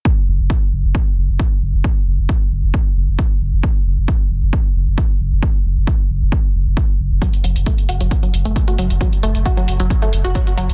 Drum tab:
HH |----------------|----------------|----------------|----------------|
BD |o---o---o---o---|o---o---o---o---|o---o---o---o---|o---o---o---o---|

HH |xxoxxxoxxxoxxxox|xxoxxxoxxxoxxxox|
BD |o---o---o---o---|o---o---o---o---|